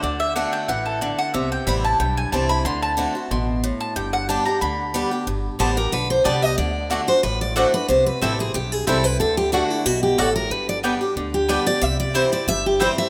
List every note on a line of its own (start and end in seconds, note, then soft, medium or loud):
0.03 0.43 D2 medium
0.03 0.34 D3 medium
0.03 0.20 D5 medium
0.20 0.35 E5 loud
0.36 0.67 D3 medium
0.36 0.67 A3 medium
0.36 0.68 D4 medium
0.36 0.68 F#4 medium
0.36 0.52 F#5 medium
0.53 0.68 G5 loud
0.68 1.08 A1 medium
0.68 1.00 E3 medium
0.68 0.85 F#5 medium
0.86 1.01 A4 medium
1.01 1.33 D3 medium
1.01 1.18 D5 medium
1.19 1.33 F#5 loud
1.34 1.54 C2 medium
1.34 1.97 C3 loud
1.34 1.51 E5 medium
1.52 1.66 G5 loud
1.67 1.95 A1 loud
1.67 1.84 E3 medium
1.67 1.84 G3 medium
1.67 1.84 C4 loud
1.67 1.83 E4 loud
1.67 1.84 B5 loud
1.84 2.00 C4 medium
1.84 1.99 E4 medium
1.84 1.99 A5 medium
2.00 2.27 B1 medium
2.00 2.62 G2 medium
2.00 2.17 G5 medium
2.17 2.32 G#5 loud
2.32 2.60 C2 medium
2.32 2.49 E3 medium
2.32 2.50 G3 medium
2.32 2.50 C4 loud
2.32 2.49 E4 medium
2.32 2.49 A5 medium
2.49 2.66 C4 medium
2.49 2.65 E4 medium
2.49 2.64 B5 loud
2.65 3.05 D2 medium
2.65 2.96 D3 medium
2.65 2.82 C6 loud
2.82 2.92 A5 loud
2.97 3.14 D3 loud
2.97 3.14 A3 medium
2.97 3.15 C4 medium
2.97 3.14 F#4 loud
3.15 3.31 C4 soft
3.15 3.30 F#4 medium
3.31 3.70 A1 medium
3.31 3.62 B2 loud
3.31 3.77 C6 medium
3.64 3.95 A2 medium
3.81 3.96 A5 loud
3.96 4.36 G1 medium
3.96 4.59 G2 medium
3.96 4.13 G5 medium
4.13 4.28 F#5 loud
4.29 4.46 G3 medium
4.29 4.46 B3 medium
4.29 4.46 D4 loud
4.29 4.45 G4 loud
4.29 4.45 A5 medium
4.45 4.62 D4 medium
4.45 4.61 G4 medium
4.45 4.61 A#5 medium
4.61 5.01 D2 medium
4.61 5.24 D3 medium
4.61 5.08 B5 medium
4.94 5.11 G3 loud
4.94 5.11 B3 medium
4.94 5.12 D4 loud
4.94 5.10 G4 loud
5.11 5.27 D4 medium
5.11 5.26 G4 medium
5.27 5.47 G1 medium
5.27 5.90 G2 medium
5.59 5.88 A1 medium
5.59 5.76 D3 medium
5.59 5.76 G3 medium
5.59 5.69 B3 medium
5.59 5.77 B3 loud
5.59 5.69 G4 medium
5.59 5.76 G4 medium
5.59 5.77 C5 medium
5.59 5.69 D5 medium
5.59 5.70 A5 loud
5.77 5.93 B3 medium
5.77 5.92 G4 medium
5.77 5.92 A#4 medium
5.92 6.20 B1 medium
5.92 6.24 D3 medium
5.92 6.10 B4 medium
6.10 6.25 C5 medium
6.24 6.53 C2 medium
6.24 6.42 D3 medium
6.24 6.42 G3 medium
6.24 6.34 B3 medium
6.24 6.42 B3 medium
6.24 6.35 G4 loud
6.24 6.41 G4 medium
6.24 6.35 D5 loud
6.24 6.42 D5 medium
6.24 6.35 A5 loud
6.42 6.58 B3 medium
6.42 6.57 G4 medium
6.42 6.57 D#5 loud
6.58 6.98 D2 medium
6.58 6.89 D3 medium
6.58 7.05 D5 medium
6.90 7.07 D3 medium
6.90 7.00 A3 medium
6.90 7.08 A3 medium
6.90 7.08 D4 medium
6.90 7.00 F#4 loud
6.90 7.06 F#4 medium
6.90 7.00 D5 medium
6.90 7.01 F#5 loud
7.07 7.24 D4 soft
7.07 7.23 F#4 medium
7.07 7.23 C5 medium
7.23 7.64 A1 medium
7.23 7.86 A2 medium
7.23 7.40 B4 medium
7.41 7.56 D5 medium
7.56 7.73 D3 medium
7.56 7.66 A3 loud
7.56 7.73 A3 loud
7.56 7.74 D4 medium
7.56 7.66 F#4 loud
7.56 7.72 F#4 medium
7.56 7.73 C5 medium
7.56 7.66 D5 loud
7.56 7.66 F#5 loud
7.74 7.89 D4 medium
7.74 7.89 F#4 medium
7.74 7.88 B4 loud
7.88 8.09 C2 medium
7.88 8.52 C3 medium
7.88 8.06 C5 medium
8.06 8.22 B4 medium
8.21 8.50 A1 loud
8.21 8.38 E3 medium
8.21 8.39 G3 medium
8.21 8.31 C4 medium
8.21 8.39 C4 medium
8.21 8.32 E4 medium
8.21 8.38 E4 loud
8.21 8.39 A4 medium
8.21 8.32 C5 loud
8.21 8.32 G5 loud
8.39 8.55 C4 soft
8.39 8.54 E4 medium
8.39 8.54 G#4 medium
8.54 8.83 B1 medium
8.54 9.17 G2 loud
8.54 8.72 G4 medium
8.72 8.87 G#4 medium
8.87 9.15 C2 medium
8.87 9.04 E3 medium
8.87 9.04 G3 medium
8.87 8.97 C4 loud
8.87 9.05 C4 loud
8.87 8.97 E4 medium
8.87 9.04 E4 loud
8.87 9.04 A4 medium
8.87 8.97 C5 loud
8.87 8.97 G5 loud
9.04 9.20 C4 soft
9.04 9.20 E4 medium
9.04 9.19 B4 loud
9.20 9.60 D2 medium
9.20 9.51 D3 medium
9.20 9.37 A4 medium
9.37 9.52 G4 medium
9.52 9.84 D3 medium
9.52 9.84 A3 medium
9.52 9.63 A3 medium
9.52 9.85 D4 medium
9.52 9.70 F#4 medium
9.52 9.63 F#4 loud
9.52 9.85 F#4 loud
9.52 9.63 D5 loud
9.52 9.63 F#5 medium
9.70 9.86 E4 medium
9.86 10.14 B1 medium
9.86 10.17 B2 medium
9.86 10.02 F#4 medium
10.03 10.18 G4 medium
10.18 10.46 A1 medium
10.18 10.50 A2 medium
10.18 10.28 A3 loud
10.18 10.28 F#4 loud
10.18 10.35 A4 medium
10.18 10.28 D5 loud
10.18 10.28 F#5 loud
10.36 10.52 A#4 medium
10.50 10.90 G1 medium
10.50 11.14 G2 medium
10.50 10.68 B4 medium
10.69 10.78 D5 loud
10.83 11.01 G3 medium
10.83 10.93 B3 medium
10.83 11.01 B3 medium
10.83 11.01 D4 medium
10.83 10.93 G4 medium
10.83 11.00 G4 medium
10.83 10.94 D5 medium
10.83 10.94 G5 loud
11.01 11.17 D4 medium
11.01 11.16 G4 medium
11.16 11.56 D2 medium
11.16 11.79 D3 medium
11.34 11.49 G4 medium
11.48 11.66 G3 medium
11.48 11.59 B3 medium
11.48 11.66 B3 medium
11.48 11.67 D4 medium
11.48 11.59 G4 loud
11.48 11.65 G4 loud
11.48 11.66 B4 medium
11.48 11.59 D5 loud
11.48 11.59 G5 medium
11.66 11.82 D4 medium
11.66 11.81 G4 medium
11.66 11.82 D5 loud
11.81 12.22 C2 medium
11.81 12.44 C3 loud
11.81 11.99 E5 loud
12.00 12.15 D5 loud
12.14 12.32 E3 medium
12.14 12.32 G3 medium
12.14 12.24 C4 medium
12.14 12.32 C4 medium
12.14 12.24 E4 medium
12.14 12.31 E4 medium
12.14 12.32 C5 medium
12.14 12.25 C5 loud
12.14 12.25 G5 loud
12.32 12.48 C4 medium
12.32 12.47 E4 medium
12.32 12.47 D5 medium
12.47 12.87 G1 medium
12.47 13.09 G2 medium
12.47 12.65 E5 loud
12.66 12.81 G4 medium
12.80 13.09 E3 medium
12.80 13.09 G3 medium
12.80 12.90 C4 medium
12.80 13.09 C4 medium
12.80 12.90 E4 medium
12.80 13.09 E4 loud
12.80 12.90 C5 loud
12.80 12.98 C5 medium
12.80 12.90 G5 loud
12.98 13.09 E5 loud